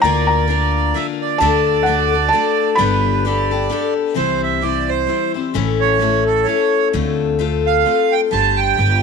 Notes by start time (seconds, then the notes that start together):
0.02 D2 D3 A#3 D4 F4 A#4 D5 A#5
0.27 A#5
0.48 A#3 D4 F4 A#4
0.94 A#3 D4 F4 A#4 E5
1.21 D5
1.38 D2 D3 A3 D4 F#4 A4 D5 A5
1.83 A3 F#5
1.87 D4 F#4 A4
2.12 D4 F#4 A4
2.29 A3 A5
2.33 D4 F#4 A4
2.75 G1 G3 B3 D4 G4 B4 B5
2.80 A4
3.25 B3 D4 G4 A4 D5
3.51 D4 G4 A4
3.70 B3 D4 G4 A4
4.14 C2 C3 E3 G3 C4 E4 C5
4.43 E5
4.61 G3 C4 E4 C5 D5
4.89 C5
5.07 G3 C4 E4 C5
5.34 G3 C4 E4 C5
5.54 A1 A2 E3 A3 C#4 E4 A4
5.80 C#5
5.99 A3 C#4 E4 A4
6.26 A4
6.44 A3 C#4 C#5
6.49 E4 A4
6.93 D2 D3 A3 C4 F4 A4
7.39 A3 C4 F4 A4
7.66 F5
7.85 A3 C4 F4 A4
8.12 G5
8.31 G1 G3 D4 G4 C5 A5
8.56 G5
8.77 G1 G3 D4 G4 B4